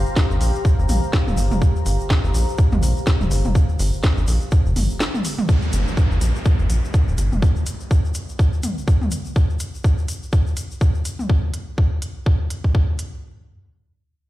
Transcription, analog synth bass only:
0.31 G1
0.41 A#1
0.79 G1
0.89 A#1
1.27 D1
1.37 G1
1.51 F1
1.86 G1
2.24 G1
2.34 A#1
2.72 G1
2.83 A#1
3.21 D1
3.31 G1
3.45 F1
3.80 G1
4.17 G1
4.28 A#1
4.66 F1
4.76 G1
5.73 G1
6.11 G1
6.21 A#1
6.59 G1
6.70 A#1
7.08 D1
7.18 G1
7.32 F1

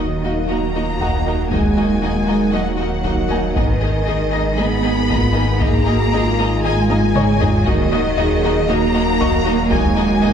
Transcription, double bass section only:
0.00 D#2
0.50 D#2
1.01 D#2
1.52 D#2
2.02 D#2
2.54 D#2
3.05 D#2
3.56 G#1
4.08 G#1
4.59 G#1
5.10 G#1
5.62 G#1
6.13 G#1
6.65 G#1
7.16 G#1
7.67 D#2
8.19 D#2
8.70 D#2
9.20 D#2
9.72 D#2
10.23 D#2

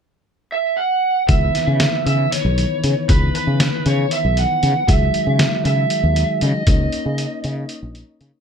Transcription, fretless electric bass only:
1.29 C#2
1.67 C#3
2.06 C#3
2.45 B1
2.84 C#3
3.09 C#2
3.47 C#3
3.86 C#3
4.25 B1
4.63 C#3
4.88 C#2
5.27 C#3
5.65 C#3
6.03 D#2
6.42 C#3
6.67 C#2
7.06 C#3
7.44 C#3
7.83 A#1
8.21 C#3

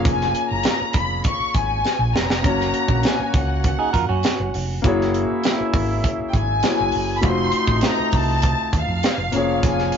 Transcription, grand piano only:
Already playing: A#3 C#4 F4 G#4 C#5
2.42 A#3 C#4
2.47 F#4 C#5
4.82 A#3 E4 F#4
4.86 G#4 C#5
6.63 A#3 E4 F#4 G#4 C#5
7.21 A3 D#4 F4
7.26 F#4 C5
9.32 F3 A#3 C#4
9.36 G#4 C#5

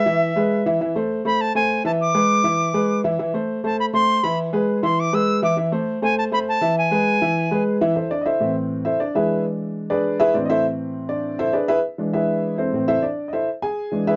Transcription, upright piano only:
0.06 E3 E4 E5
0.36 G#3 G#4 B4
0.66 E3 E4 E5
0.81 E3 E4 E5
0.96 A3 A4 C5
1.25 A3 A4 C5
1.55 A3 A4 C5
1.84 E3 E4 E5
2.14 G#3 G#4 B4
2.44 E3 E4 E5
2.74 G#3 G#4 B4
3.04 E3 E4 E5
3.19 E3 E4 E5
3.34 A3 A4 C5
3.64 A3 A4 C5
3.93 A3 A4 C5
4.23 E3 E4 E5
4.53 G#3 G#4 B4
4.83 E3 E4 E5
5.13 G#3 G#4 B4
5.42 E3 E4 E5
5.57 E3 E4 E5
5.72 A3 A4 C5
6.02 A3 A4 C5
6.32 A3 A4 C5
6.61 E3 E4 E5
6.91 G#3 G#4 B4
7.22 E3 E4 E5
7.51 G#3 G#4 B4
7.81 E3 E4 E5
7.96 E4 A4 C5 E5
8.11 D4 D5
8.21 D#5
8.26 E4 A4 C5 E5
8.40 A2 E3 C4
8.85 E4 A4 C5 E5
9.00 D4 D5
9.15 E3 G#3 D4 E4 G#4 B4 E5
9.90 D4 G#4 B4 D5
10.20 E4 G#4 B4 E5
10.34 A2 E3 C4 D4 D5
10.45 D#5
10.50 E4 A4 C5 E5
11.09 D4 D5
11.39 E4 A4 C5 E5
11.53 D4 G#4 B4 D5
11.68 E4 G#4 B4 E5
11.98 E3 G#3 D4
12.13 E4 G#4 B4 E5
12.58 C4 E4 A4 C5
12.73 A2 E3 C4
12.88 E4 A4 C5 E5
13.02 D4 D5
13.28 D#5
13.33 E4 A4 C5 E5
13.62 G#4 G#5
13.91 E3 G#3 D4
14.07 E4 G#4 B4 E5

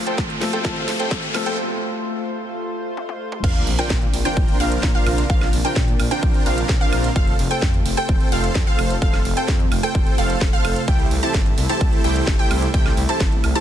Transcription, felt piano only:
Already playing: F3 A3 C4 A4
0.40 F3 A3 C4 A4
0.64 F3 A3 C4 A4
1.33 F3 A3 C4 A4

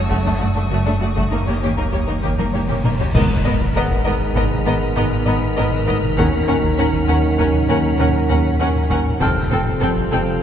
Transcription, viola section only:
0.11 A3
0.26 A3
0.42 A3
0.57 A3
0.73 A3
0.87 A3
1.03 A3
1.18 A3
1.33 A#3
1.49 A#3
1.64 A#3
1.79 A#3
1.94 A#3
2.10 A#3
2.25 A#3
2.39 A#3
2.55 A#3
2.70 A#3
2.85 A#3
3.00 A#3
3.15 B3
3.45 B3
3.76 B3
4.06 B3
4.35 B3
4.66 B3
4.96 B3
5.27 B3
5.57 B3
5.86 B3
6.17 C#4
6.47 C#4
6.78 C#4
7.07 C#4
7.38 C#4
7.69 C#4
7.99 C#4
8.30 C#4
8.60 C#4
8.90 C#4
9.21 C4
9.51 C4
9.82 C4
10.12 C4

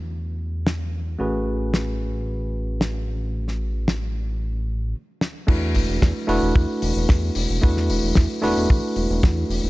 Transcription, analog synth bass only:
Already playing: E2
1.20 A1
5.48 E2
5.76 E1
5.89 E1
6.02 E2
6.29 E1
6.43 E1
6.55 E2
6.83 E1
6.97 E1
7.10 E2
7.36 E1
7.50 E1
7.63 E2
7.89 E1
8.03 E1
8.17 E2
8.43 E1
8.57 E1
8.70 E2
8.97 E1
9.11 E1
9.23 E2
9.50 E1
9.64 E1

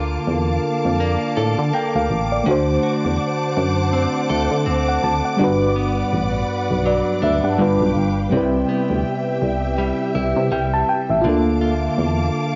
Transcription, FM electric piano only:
Already playing: D4 F4 A4 A#4
1.74 G5
1.96 F5
2.32 D5
2.44 A3 D4
2.49 F#4 C5
4.88 F#5
5.04 A5
5.25 F#5
5.37 G3 D4
5.41 F#4 B4
6.87 D5
7.23 E5
7.45 F#5
7.58 G3 D4 F4 B4
8.30 G3 C4
8.35 E4 B4
10.52 G5
10.74 A5
10.89 G5
11.10 E5
11.22 A#3 F4
11.27 D4 A4

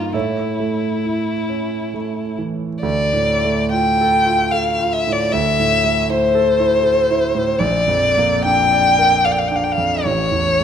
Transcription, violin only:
Already playing: F4
0.13 E4
2.82 D5
3.72 G5
4.52 F5
4.93 E5
5.12 D5
5.32 E5
6.09 C5
7.59 D5
8.45 G5
9.24 F5
9.32 G5
9.39 F5
9.48 G5
9.56 F5
9.64 G5
9.72 F5
10.04 C#5

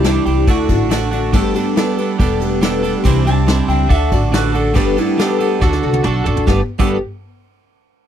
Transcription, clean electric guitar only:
0.03 E3 G3 D4 G4
0.26 G3 D4 G4
0.47 D3 A3 D4 F#4
0.89 D3 A3 D4 F#4
1.11 A3 D4 F#4
1.33 G3 B3 D4 A4
1.55 B3 D4 A4
1.76 G3 B3 D4 A4
1.97 B3 D4 A4
2.19 G3 B3 D4 A4
2.62 G3 B3 D4 A4
2.83 B3 D4 A4
3.04 C3 G3 C4 D4 E4
3.25 C4 D4 E4
3.47 G3 C4 D4 E4
3.68 C4 D4 E4
3.88 D3 D4 F#4 A4
4.32 D3 D4 F#4 A4
4.52 D4 F#4 A4
4.74 G3 B3 D4 A4
4.97 B3 D4 A4
5.18 G3 B3 D4 A4
5.39 B3 D4 A4
5.60 D3 D4 F#4 A4
6.03 D3 D4 F#4 A4
6.24 D4 F#4 A4
6.47 G3 B3 D4 A4
6.79 G3 B3 D4 A4

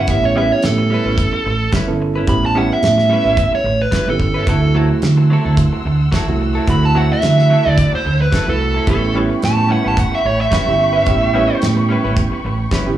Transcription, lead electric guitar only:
0.00 F#5
0.10 E5
0.25 C#5
0.38 E5
0.52 C#5
0.65 A4
2.29 B5
2.46 A5
2.58 F#5
2.73 E5
3.55 C#5
3.82 B4
4.10 A4
4.50 A4
6.70 B5
6.85 A5
6.98 F#5
7.13 E5
7.70 D5
7.95 C5
8.22 B4
8.49 A4
8.90 A4
9.45 A5
9.72 F#5
9.88 A5
10.00 F#5
10.15 E5
10.26 C#5
10.41 E5
10.53 E5

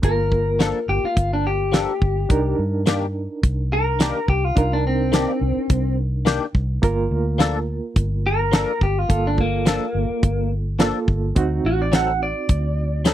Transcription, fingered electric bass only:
0.03 G1
0.88 G1
1.04 muted fingered electric bass stroke
1.17 G1
2.02 G1
2.30 C2
2.59 G2
3.43 C2
4.28 C2
4.57 C2
5.41 C2
5.70 C2
6.55 C2
6.83 G1
7.11 D2
7.96 G1
8.81 G1
9.10 G1
9.95 G1
10.23 G1
11.08 G1
11.36 D2
11.64 A1
12.49 D2

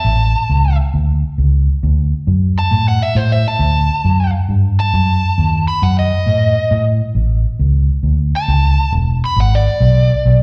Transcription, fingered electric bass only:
0.05 A1
0.49 C#2
0.94 D2
1.38 C#2
1.83 D2
2.27 F#2
2.71 A2
3.15 A2
3.59 D2
4.05 F#2
4.49 G2
4.94 F#2
5.38 D#2
5.82 F#2
6.26 A2
6.71 A2
7.15 A1
7.59 C#2
8.03 D2
8.48 C#2
8.92 E1
9.36 G#1
9.80 B1
10.25 B1

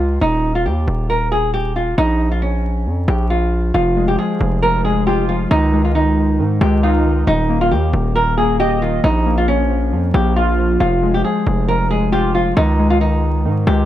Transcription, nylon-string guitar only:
Already playing: F4
0.21 D#4
0.55 F4
0.66 G4
1.10 A#4
1.32 G#4
1.54 G4
1.76 F4
1.98 D#4
2.31 F4
2.42 C#4
3.08 G4
3.30 F4
3.74 F4
4.08 G4
4.18 G#4
4.62 A#4
4.85 G#4
5.07 G4
5.29 F4
5.51 D#4
5.85 F4
5.95 D#4
6.61 G4
6.83 F4
7.27 D#4
7.61 F4
7.71 G4
8.15 A#4
8.38 G#4
8.60 G4
8.82 F4
9.04 D#4
9.38 F4
9.48 C#4
10.14 G4
10.36 F4
10.80 F4
11.14 G4
11.24 G#4
11.68 A#4
11.91 G#4
12.12 G4
12.35 F4
12.57 D#4
12.90 F4
13.01 D#4
13.67 G4

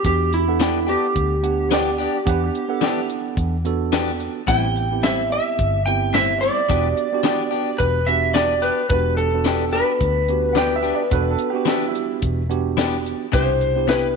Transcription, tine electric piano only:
0.05 B3 D4 F#4 G4
0.48 B3 D4 A4 F#5
1.43 B3 D4 G4 F#5
2.25 B3 D4 G4 F#5
2.69 B3 D4 A4 F#5
3.65 B3 D4 F#4 A4
4.48 B3 C4 E4 G4
4.91 B3 C4 E4 G4
5.86 B3 C4 E4 G4
6.69 B3 D4 F#4 G4
7.12 B3 D4 F#4 G4
8.07 B3 D4 F#4 G4
8.91 B3 D4 F#4 G4
9.34 B3 D4 F#4 A4
10.29 B3 D4 F#4 G4
11.11 B3 D4 F#4 A4
11.54 B3 D4 F#4 G4
12.49 B3 D4 F#4 G4
13.33 B2 D4 E4 G4
13.75 B3 D4 E4 G4

